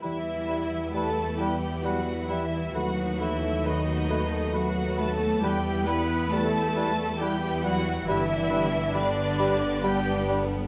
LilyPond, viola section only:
\new Staff \with { instrumentName = "Viola section" } { \time 3/4 \key e \minor \tempo 4 = 67 e'4 a'8 g'8 fis'8 e'8 | fis'8 e'8 dis'4 fis'8 a'8 | g'8 b'8 a'4 g'8 fis'8 | e'4 d'4 g'8 r8 | }